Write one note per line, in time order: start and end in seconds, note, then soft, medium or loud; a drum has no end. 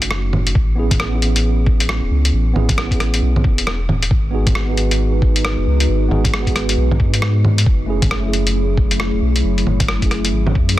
0.00 0.54 F#1 loud
0.00 0.52 A3 medium
0.00 0.53 C#4 medium
0.00 0.55 D#4 medium
0.00 0.56 F#4 medium
0.00 closed hi-hat medium
0.11 cross-stick loud
0.33 low bongo medium
0.47 closed hi-hat medium
0.55 2.00 A1 loud
0.55 kick loud
0.75 1.08 B3 medium
0.75 1.10 C#4 medium
0.75 1.10 E4 medium
0.75 1.11 G#4 medium
0.91 kick loud
0.91 closed hi-hat medium
0.91 low bongo soft
1.00 cross-stick loud
1.09 2.51 B3 medium
1.09 2.52 C#4 medium
1.14 2.54 E4 medium
1.14 2.55 G#4 medium
1.22 closed hi-hat soft
1.36 closed hi-hat medium
1.66 kick loud
1.80 closed hi-hat medium
1.89 cross-stick loud
2.02 2.10 E1 medium
2.11 2.32 C#2 medium
2.25 closed hi-hat medium
2.33 2.54 A1 loud
2.53 3.21 A1 loud
2.53 2.86 B3 medium
2.53 2.87 C#4 medium
2.53 2.88 E4 medium
2.53 2.89 G#4 medium
2.53 low bongo soft
2.69 kick loud
2.69 closed hi-hat medium
2.69 low bongo soft
2.78 cross-stick loud
2.87 3.75 B3 medium
2.87 3.77 C#4 medium
2.87 kick medium
2.92 3.78 E4 medium
2.92 3.79 G#4 medium
2.92 closed hi-hat soft
3.00 cross-stick medium
3.00 closed hi-hat soft
3.14 closed hi-hat medium
3.22 3.46 B1 medium
3.36 low bongo medium
3.44 4.10 E1 loud
3.44 kick loud
3.58 closed hi-hat medium
3.67 cross-stick loud
3.89 low bongo medium
4.03 closed hi-hat medium
4.10 5.56 G#1 loud
4.10 7.62 G#3 medium
4.10 7.63 D#4 medium
4.10 7.62 F#4 medium
4.10 7.62 B4 medium
4.10 kick loud
4.31 4.64 B3 medium
4.31 4.65 D#4 medium
4.31 4.66 F#4 medium
4.35 4.66 G#4 medium
4.47 kick loud
4.47 closed hi-hat medium
4.47 low bongo soft
4.55 cross-stick loud
4.65 6.07 B3 medium
4.65 6.08 D#4 medium
4.70 6.09 F#4 medium
4.70 6.11 G#4 medium
4.77 closed hi-hat soft
4.91 closed hi-hat medium
5.22 kick loud
5.36 closed hi-hat soft
5.45 cross-stick loud
5.58 5.66 F#1 medium
5.66 5.87 C#2 medium
5.80 closed hi-hat medium
5.89 6.09 G#1 medium
6.08 6.77 G#1 medium
6.08 6.41 B3 medium
6.08 6.43 D#4 medium
6.08 6.43 F#4 medium
6.08 6.44 G#4 medium
6.08 low bongo soft
6.25 kick loud
6.25 closed hi-hat soft
6.25 low bongo soft
6.34 cross-stick loud
6.42 7.63 B3 medium
6.42 7.65 D#4 medium
6.47 7.66 F#4 medium
6.47 7.67 G#4 medium
6.47 kick medium
6.47 closed hi-hat soft
6.56 cross-stick medium
6.56 closed hi-hat soft
6.69 closed hi-hat medium
6.77 7.01 B1 medium
6.91 low bongo medium
7.00 7.65 G#2 loud
7.00 kick loud
7.14 closed hi-hat medium
7.22 cross-stick medium
7.45 low bongo medium
7.58 closed hi-hat medium
7.66 9.11 F#1 loud
7.66 10.79 F#3 medium
7.66 10.79 A3 medium
7.66 10.79 E4 medium
7.66 10.79 G#4 medium
7.66 kick loud
7.86 8.19 A3 medium
7.86 8.20 C#4 medium
7.86 8.21 E4 medium
7.90 8.22 G#4 medium
8.02 kick medium
8.02 closed hi-hat medium
8.02 low bongo medium
8.11 cross-stick medium
8.20 9.62 A3 medium
8.20 9.63 C#4 medium
8.26 9.65 E4 medium
8.26 9.66 G#4 medium
8.33 closed hi-hat soft
8.47 closed hi-hat medium
8.77 kick medium
8.91 closed hi-hat soft
9.00 cross-stick loud
9.13 9.21 E1 medium
9.22 9.43 B1 medium
9.36 closed hi-hat medium
9.44 9.65 F#1 loud
9.58 closed hi-hat soft
9.66 10.32 F#1 loud
9.66 low bongo soft
9.80 kick loud
9.80 closed hi-hat medium
9.80 low bongo medium
9.88 cross-stick loud
9.98 10.79 A3 medium
9.98 10.79 C#4 medium
10.02 10.79 E4 medium
10.02 10.79 G#4 medium
10.02 kick medium
10.02 closed hi-hat soft
10.11 cross-stick medium
10.11 closed hi-hat soft
10.25 closed hi-hat medium
10.33 10.57 G#1 medium
10.47 low bongo medium
10.55 10.79 F#2 loud
10.55 kick medium
10.69 closed hi-hat medium